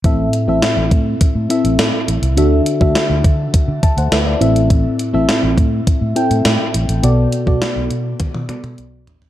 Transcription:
<<
  \new Staff \with { instrumentName = "FM electric piano" } { \time 4/4 \key a \dorian \tempo 4 = 103 << { r1 | r2 r8 <e'' a''>16 <c'' fis''>16 <b' e''>16 <a' d''>8 r16 | r1 | r1 | } \\ { <c' e' a' e''>8 r16 <c' e' a' e''>4~ <c' e' a' e''>16 r8 <c' e' a' e''>4 r8 | <d' fis' a' e''>8 r16 <d' fis' a' e''>4~ <d' fis' a' e''>16 r4. <c' e' a' e''>8~ | <c' e' a' e''>8 r16 <c' e' a' e''>4~ <c' e' a' e''>16 r8 <c' e' a' g''>4 r8 | <b fis' a' d''>8 r16 <b fis' a' d''>4~ <b fis' a' d''>16 r8 <b fis' a' d''>4 r8 | } >> }
  \new Staff \with { instrumentName = "FM electric piano" } { \clef bass \time 4/4 \key a \dorian a,4. r2 r8 | d4. r2 a,8~ | a,4 r2. | b,4. r2 r8 | }
  \new Staff \with { instrumentName = "Fingered electric bass" } { \clef bass \time 4/4 \key a \dorian a,,8 r16 a,,16 r16 a,,16 a,8 r16 a,16 r16 a,,16 a,16 r16 a,,16 c,16 | d,8 r16 d,16 r16 d,16 d8 r16 d16 r16 d,16 d,8 a,,8~ | a,,8 r16 a,,16 r16 a,,16 a,8 r16 a,16 r16 a,16 a,16 r16 a,,16 a,,16 | b,,8 r16 b,,16 r16 b,,16 b,8 r16 b,16 r16 b,16 b,,8 a,,8 | }
  \new DrumStaff \with { instrumentName = "Drums" } \drummode { \time 4/4 <hh bd>8 hh8 <hh sn>8 <hh bd>8 <hh bd>8 hh16 hh16 <hh sn>8 hh16 hh16 | hh8 hh16 bd16 <hh sn>8 <hh bd>8 <hh bd>8 <hh bd>16 hh16 <hh sn>8 hh16 hh16 | <hh bd>8 hh8 <hh sn>8 <hh bd>8 <hh bd>8 hh16 hh16 <hh sn>8 hh16 hh16 | hh8 hh16 bd16 <hh sn>8 hh8 <hh bd tommh>16 tommh16 <hh toml>16 <hh toml>16 hh8 <hh tomfh>16 tomfh16 | }
>>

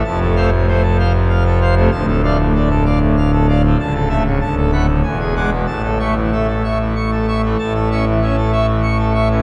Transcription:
<<
  \new Staff \with { instrumentName = "Pipe organ" } { \time 3/4 \key a \major \tempo 4 = 96 a''16 a'16 <c'' f''>16 c16 c''16 a'16 <c'' f''>16 c16 f''16 a'16 <c'' f''>16 c16 | a''16 a'16 <d'' f''>16 a,16 d''16 a'16 <d'' f''>16 a,16 f''16 a'16 <d'' f''>16 a,16 | a''16 a'16 <e'' a''>16 cis16 a''16 a'16 <fis'' b''>16 a,16 gis''16 gis'16 <fis'' d'''>16 b,16 | a''16 a'16 <e'' cis'''>16 e16 e''16 a'16 <e'' cis'''>16 e16 cis'''16 a'16 <e'' cis'''>16 e16 |
a''16 a'16 <e'' cis'''>16 e16 e''16 a'16 <e'' cis'''>16 e16 cis'''16 a'16 <e'' cis'''>16 e16 | }
  \new Staff \with { instrumentName = "Pipe organ" } { \clef bass \time 3/4 \key a \major << { f,8 a16 r16 a16 r4. a16 | d,8 a16 r16 a16 r4. a16 | cis,8 a16 r16 d,8 a16 r16 e,8 gis16 r16 | a,8 a16 r16 a16 r4. a16 |
a,8 cis'16 r16 cis'16 r4. cis'16 | } \\ { f,,2. | d,,2. | cis,,4 d,,4 e,,4 | a,,2. |
a,,2. | } >> }
>>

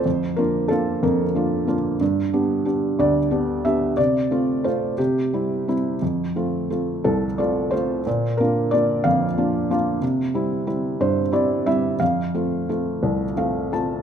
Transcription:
\new Staff \with { instrumentName = "Felt piano" } { \time 6/8 \key f \major \tempo 4. = 60 << { c''8 bes'8 a'8 bes'4 r8 | r4. d''4 e''8 | d''4 c''8 g'4 r8 | r4. a'8 d''8 c''8~ |
c''8 bes'8 d''8 f''4 r8 | r4. c''8 d''8 e''8 | f''2 f''8 a''8 | } \\ { f,8 <bes d' f'>8 <bes d' f'>8 f,8 <bes d' f'>8 <bes d' f'>8 | g,8 <b d' g'>8 <b d' g'>8 d,8 <b d' g'>8 <b d' g'>8 | c8 <a c' f'>8 <a c' f'>8 c8 <g c' e'>8 <g c' e'>8 | f,8 <a c' f'>8 <a c' f'>8 c,8 <a c' f'>8 <a c' f'>8 |
bes,8 <bes d' f'>8 <bes d' f'>8 f,8 <bes d' f'>8 <bes d' f'>8 | c8 <g c' e'>8 <g c' e'>8 g,8 <g c' e'>8 <g c' e'>8 | f,8 <a c' f'>8 <a c' f'>8 c,8 <a c' f'>8 <a c' f'>8 | } >> }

